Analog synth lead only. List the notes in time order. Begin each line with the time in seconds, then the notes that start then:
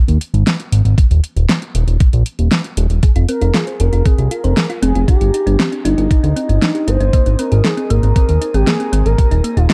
3.28 A#4
3.54 G#4
3.80 A#4
4.05 G#4
4.31 A#4
4.82 G#4
5.08 G4
5.85 D#4
6.88 C5
7.39 A#4
7.65 G#4
7.90 A#4
8.55 G4
8.67 G#4
9.06 A#4
9.57 F4
9.70 G4